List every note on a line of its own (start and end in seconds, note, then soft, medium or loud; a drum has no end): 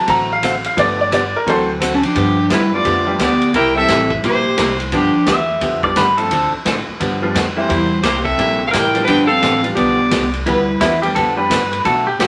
0.00 0.73 E3 medium
0.00 0.74 F#3 medium
0.00 0.74 C4 medium
0.07 0.64 A1 medium
0.07 0.29 D3 medium
0.07 0.30 A3 medium
0.07 0.30 C4 medium
0.07 0.30 F#4 medium
0.07 0.30 A4 medium
0.07 0.30 A#5 loud
0.07 kick soft
0.07 ride medium
0.33 0.43 F5 loud
0.43 0.54 D3 medium
0.43 0.55 A3 medium
0.43 0.55 C4 medium
0.43 0.55 F#4 medium
0.43 0.55 A4 medium
0.43 0.65 F5 loud
0.43 kick soft
0.43 hi-hat pedal medium
0.43 ride medium
0.64 0.78 F5 medium
0.64 ride medium
0.77 1.33 G1 loud
0.77 0.99 D3 medium
0.77 1.03 F3 medium
0.77 0.99 F3 medium
0.77 1.03 A3 medium
0.77 0.99 B3 medium
0.77 1.03 B3 medium
0.77 0.99 D4 medium
0.77 0.99 G4 medium
0.77 0.99 D5 loud
0.77 kick soft
0.77 ride medium
1.01 1.12 D5 medium
1.11 1.23 D3 medium
1.11 1.23 F3 medium
1.11 1.23 B3 medium
1.11 1.24 D4 medium
1.11 1.24 G4 medium
1.11 1.34 D5 medium
1.11 kick soft
1.11 hi-hat pedal medium
1.11 ride medium
1.36 1.48 A#4 medium
1.46 2.02 D2 medium
1.46 1.68 D3 medium
1.46 2.00 E3 medium
1.46 2.00 F#3 medium
1.46 1.68 A3 medium
1.46 1.68 C4 medium
1.46 2.01 C4 medium
1.46 1.69 F#4 medium
1.46 1.69 A4 medium
1.46 1.68 A4 medium
1.46 1.69 C5 loud
1.46 kick soft
1.46 ride medium
1.80 1.92 D3 medium
1.80 1.93 A3 medium
1.80 1.93 C4 medium
1.80 1.93 F#4 medium
1.80 1.93 A4 medium
1.80 kick soft
1.80 hi-hat pedal medium
1.80 ride medium
1.94 2.03 C#4 medium
1.94 2.02 A4 medium
2.03 2.48 F3 medium
2.03 2.52 D4 medium
2.03 2.48 G4 medium
2.03 ride medium
2.15 2.49 G2 medium
2.15 2.37 D3 medium
2.15 2.37 F3 medium
2.15 2.37 B3 medium
2.15 2.38 D4 medium
2.15 2.38 G4 medium
2.15 kick soft
2.15 ride medium
2.50 2.84 F#2 medium
2.50 2.62 D3 medium
2.50 2.62 F3 medium
2.50 2.72 G3 medium
2.50 2.62 B3 medium
2.50 2.62 D4 medium
2.50 2.74 E4 medium
2.50 2.62 G4 medium
2.50 2.72 B4 medium
2.50 kick soft
2.50 snare medium
2.50 hi-hat pedal medium
2.50 ride medium
2.72 2.84 F3 medium
2.72 2.84 G3 medium
2.72 3.18 A3 medium
2.72 2.84 B3 medium
2.72 2.84 D4 medium
2.72 2.84 F4 medium
2.72 3.21 F4 medium
2.72 3.17 D5 medium
2.85 3.19 F2 medium
2.85 3.06 D3 medium
2.85 3.06 F3 medium
2.85 3.07 B3 medium
2.85 3.07 D4 medium
2.85 3.07 G4 medium
2.85 kick soft
2.85 ride medium
3.06 3.18 F3 medium
3.06 3.18 G3 medium
3.06 3.19 B3 medium
3.06 3.18 D4 medium
3.06 3.18 G4 medium
3.19 3.53 D2 medium
3.19 3.31 D3 medium
3.19 3.31 F3 medium
3.19 3.31 B3 medium
3.19 3.53 B3 medium
3.19 3.31 D4 medium
3.19 3.31 G4 medium
3.19 3.55 G4 medium
3.19 3.53 D5 medium
3.19 kick soft
3.19 snare medium
3.19 hi-hat pedal medium
3.19 ride medium
3.41 ride soft
3.54 3.88 C2 medium
3.54 3.76 C3 medium
3.54 3.76 G3 medium
3.54 3.76 A#3 medium
3.54 3.76 E4 medium
3.54 3.75 E4 medium
3.54 3.76 G4 medium
3.54 3.77 A#4 loud
3.54 3.78 G5 loud
3.54 kick soft
3.54 ride medium
3.76 4.21 E3 medium
3.76 4.21 G3 medium
3.76 4.21 A#3 medium
3.76 4.21 C4 medium
3.76 4.09 C4 medium
3.76 4.21 E4 medium
3.76 4.11 A4 loud
3.76 4.11 E5 loud
3.88 4.22 A1 loud
3.88 4.00 C3 medium
3.88 4.00 G3 medium
3.88 4.00 A#3 medium
3.88 4.00 E4 medium
3.88 4.01 G4 medium
3.88 kick soft
3.88 snare medium
3.88 hi-hat pedal medium
3.88 ride medium
4.10 kick medium
4.23 4.57 A#1 medium
4.23 4.45 C3 soft
4.23 4.45 G3 medium
4.23 4.45 A#3 medium
4.23 4.77 A#3 medium
4.23 4.46 E4 medium
4.23 4.77 G4 medium
4.23 4.46 G4 medium
4.23 4.76 C5 medium
4.23 kick soft
4.23 ride medium
4.57 4.91 C2 medium
4.57 4.69 C3 medium
4.57 4.69 G3 medium
4.57 4.69 A#3 medium
4.57 4.70 E4 medium
4.57 4.70 G4 medium
4.57 kick soft
4.57 snare medium
4.57 hi-hat pedal medium
4.57 ride medium
4.80 ride soft
4.92 5.13 G2 medium
4.92 5.14 D3 medium
4.92 5.14 F3 medium
4.92 5.26 F3 medium
4.92 5.14 B3 medium
4.92 5.14 D4 medium
4.92 5.26 D4 medium
4.92 5.25 G4 medium
4.92 5.15 G4 medium
4.92 kick soft
4.92 ride medium
5.15 muted upright bass stroke soft
5.26 5.61 E2 medium
5.26 5.38 D3 medium
5.26 5.39 F3 medium
5.26 5.39 B3 medium
5.26 5.39 D4 medium
5.26 5.39 G4 medium
5.26 5.82 E5 medium
5.26 kick soft
5.26 snare medium
5.26 hi-hat pedal medium
5.26 ride medium
5.61 5.95 F2 medium
5.61 5.83 D3 medium
5.61 5.83 F3 medium
5.61 5.83 B3 medium
5.61 5.83 D4 medium
5.61 5.84 G4 medium
5.61 kick soft
5.61 ride medium
5.83 5.95 F3 medium
5.83 5.95 G3 medium
5.83 5.95 B3 medium
5.83 5.96 D4 medium
5.83 5.95 F4 medium
5.83 5.96 D5 medium
5.83 kick medium
5.96 6.30 G2 medium
5.96 6.08 D3 medium
5.96 6.08 F3 medium
5.96 6.08 B3 medium
5.96 6.08 D4 medium
5.96 6.09 G4 medium
5.96 6.18 B4 medium
5.96 kick soft
5.96 snare medium
5.96 hi-hat pedal medium
5.96 ride medium
6.17 6.30 F3 medium
6.17 6.30 A3 medium
6.17 6.30 C4 medium
6.17 6.30 D4 medium
6.17 6.30 F4 medium
6.17 6.51 A4 medium
6.17 ride medium
6.31 6.51 D2 medium
6.31 6.52 D3 medium
6.31 6.53 F3 medium
6.31 6.53 C4 medium
6.31 6.53 D4 medium
6.31 6.53 A4 medium
6.31 kick soft
6.31 ride medium
6.52 muted upright bass stroke soft
6.65 6.86 A2 medium
6.65 6.77 D3 medium
6.65 6.77 F3 medium
6.65 6.78 C4 medium
6.65 6.78 D4 medium
6.65 6.78 A4 medium
6.65 kick soft
6.65 snare medium
6.65 hi-hat pedal medium
6.65 ride medium
6.88 muted upright bass stroke soft
7.00 7.34 G2 medium
7.00 7.22 D3 medium
7.00 7.22 F3 medium
7.00 7.22 B3 medium
7.00 7.22 D4 medium
7.00 7.22 G4 medium
7.00 kick soft
7.00 ride medium
7.22 7.34 F3 medium
7.22 7.34 G3 medium
7.22 7.34 B3 medium
7.22 7.34 D4 medium
7.22 7.34 F4 loud
7.34 7.68 F2 medium
7.34 7.46 D3 medium
7.34 7.46 F3 medium
7.34 7.47 B3 medium
7.34 7.47 D4 medium
7.34 7.47 G4 medium
7.34 kick soft
7.34 snare medium
7.34 hi-hat pedal medium
7.34 ride medium
7.57 7.68 E3 medium
7.57 7.68 G3 medium
7.57 8.01 G3 soft
7.57 7.68 A#3 medium
7.57 7.69 C4 medium
7.57 8.03 E4 medium
7.57 7.69 E4 medium
7.57 8.01 C5 medium
7.69 8.03 E2 medium
7.69 7.91 C3 medium
7.69 7.91 G3 medium
7.69 7.91 A#3 medium
7.69 7.91 E4 medium
7.69 7.91 G4 medium
7.69 kick soft
7.69 ride medium
8.02 8.37 C2 medium
8.02 8.16 C3 medium
8.02 8.16 G3 medium
8.02 8.16 A#3 medium
8.02 8.25 A#3 medium
8.02 8.16 E4 medium
8.02 8.26 G4 medium
8.02 8.24 C5 medium
8.02 kick soft
8.02 snare medium
8.02 hi-hat pedal medium
8.02 ride medium
8.06 8.16 G4 medium
8.23 8.66 C4 medium
8.23 8.67 A4 medium
8.23 8.67 E5 medium
8.23 kick medium
8.38 8.72 A#1 medium
8.38 8.60 C3 medium
8.38 8.60 G3 medium
8.38 8.60 A#3 medium
8.38 8.60 E4 medium
8.38 8.61 G4 medium
8.38 kick soft
8.38 ride medium
8.67 8.71 A4 medium
8.67 8.71 F5 medium
8.71 9.07 A1 medium
8.71 8.84 C3 medium
8.71 8.85 G3 medium
8.71 8.85 A#3 medium
8.71 9.06 E4 medium
8.71 8.85 E4 medium
8.71 8.85 G4 medium
8.71 9.04 A#4 loud
8.71 9.04 G5 medium
8.71 kick soft
8.71 snare medium
8.71 hi-hat pedal medium
8.71 ride medium
8.94 9.40 F3 medium
8.94 9.40 G3 medium
8.94 9.40 B3 medium
8.94 9.40 D4 medium
8.94 9.40 F4 medium
8.94 ride soft
9.05 9.41 G1 medium
9.05 9.29 D3 medium
9.05 9.29 F3 medium
9.05 9.29 B3 medium
9.05 9.28 D4 medium
9.05 9.30 D4 medium
9.05 9.30 G4 medium
9.05 9.27 B4 loud
9.05 9.27 G5 loud
9.05 kick soft
9.05 ride medium
9.27 9.61 A4 loud
9.27 9.61 F5 medium
9.31 9.63 C4 medium
9.42 9.76 A1 loud
9.42 9.53 D3 medium
9.42 9.54 F3 medium
9.42 9.54 B3 medium
9.42 9.54 D4 medium
9.42 9.54 G4 medium
9.42 kick soft
9.42 snare medium
9.42 hi-hat pedal medium
9.42 ride medium
9.63 10.09 F3 medium
9.63 10.09 G3 medium
9.63 10.09 B3 medium
9.63 10.09 D4 medium
9.63 10.09 F4 medium
9.63 ride soft
9.75 10.11 B1 medium
9.75 9.99 D3 medium
9.75 9.99 F3 medium
9.75 10.30 B3 medium
9.75 9.99 B3 medium
9.75 9.99 D4 medium
9.75 10.29 G4 medium
9.75 9.99 G4 medium
9.75 10.29 D5 medium
9.75 kick soft
9.75 ride medium
10.11 10.45 C2 loud
10.11 10.23 D3 medium
10.11 10.23 F3 medium
10.11 10.23 B3 medium
10.11 10.23 D4 medium
10.11 10.23 G4 medium
10.11 kick soft
10.11 snare medium
10.11 hi-hat pedal medium
10.11 ride medium
10.34 ride soft
10.45 10.80 D2 medium
10.45 10.68 D3 medium
10.45 10.68 F3 medium
10.45 10.80 G3 medium
10.45 10.69 B3 medium
10.45 10.69 D4 medium
10.45 10.79 E4 medium
10.45 10.69 G4 medium
10.45 10.78 B4 medium
10.45 kick soft
10.45 ride medium
10.80 11.14 E2 loud
10.80 10.92 D3 medium
10.80 10.92 F3 medium
10.80 10.92 B3 medium
10.80 10.93 D4 medium
10.80 11.02 E4 medium
10.80 10.93 G4 medium
10.80 kick soft
10.80 snare medium
10.80 hi-hat pedal medium
10.80 ride medium
11.02 11.14 F3 medium
11.02 11.14 G3 medium
11.02 11.14 B3 medium
11.02 11.14 D4 medium
11.02 11.14 F4 medium
11.02 11.15 G4 medium
11.02 ride soft
11.15 11.49 F2 medium
11.15 11.38 D3 medium
11.15 11.38 F3 medium
11.15 11.38 B3 medium
11.15 11.38 D4 medium
11.15 11.38 G4 medium
11.15 11.37 A4 medium
11.15 kick soft
11.15 ride medium
11.37 11.49 F3 medium
11.37 11.49 G3 medium
11.37 11.49 B3 medium
11.37 11.49 D4 medium
11.37 11.49 G4 medium
11.37 11.84 B4 medium
11.50 11.84 G2 medium
11.50 11.62 D3 medium
11.50 11.62 F3 medium
11.50 11.62 B3 medium
11.50 11.62 D4 medium
11.50 11.62 G4 medium
11.50 kick soft
11.50 snare medium
11.50 hi-hat pedal medium
11.50 ride medium
11.73 ride soft
11.85 12.18 B2 medium
11.85 12.06 B2 medium
11.85 12.07 F#3 medium
11.85 12.07 A3 medium
11.85 12.07 D4 medium
11.85 12.07 F#4 medium
11.85 12.06 A4 medium
11.85 kick soft
11.85 ride medium
12.07 12.19 G4 medium
12.19 12.27 A2 medium
12.19 12.27 B2 medium
12.19 12.27 F#3 medium
12.19 12.27 A3 medium
12.19 12.27 D4 medium
12.19 12.27 F#4 medium
12.19 12.27 G4 medium
12.19 kick soft
12.19 snare medium
12.19 hi-hat pedal medium
12.19 ride medium